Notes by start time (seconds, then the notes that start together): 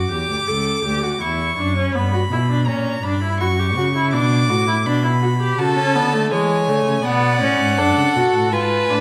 Already playing: D6
0.11 E2 G4
0.30 D2
0.48 C#2 A4
0.84 D2 G4
1.03 F#4
1.21 E2 E4 C#6
1.58 F#2 D4
1.77 C#4
1.95 G2 B3 B5
2.13 F#4
2.31 B2 E4
2.50 D4
2.67 A#2 C#4 A#5
3.04 G2 D4 B5
3.23 E4
3.40 F#2 F#4 C#6
3.59 G4
3.77 C#3 F#4
3.95 E4
4.13 B2 D4 D6
4.50 A2 F#4
4.68 E4
4.86 B2 D4 B5
5.04 E4
5.22 F#4
5.40 G4
5.59 C#3 F#4 A4 A5
5.77 C#4
5.95 D3 B3
6.14 A3
6.32 E3 G#3 C#5 G#5
6.68 D3 A3
6.86 C#3
7.04 B2 B3 D5 F#5
7.41 A2 C#4
7.60 G#2
7.78 F#2 D4 A4
7.97 C#3
8.15 B2 F#4
8.34 A2
8.52 G#2 F4 B4 G#5
8.60 A5
8.69 G#5
8.77 A5
8.85 G#5
8.90 A2 D4 A5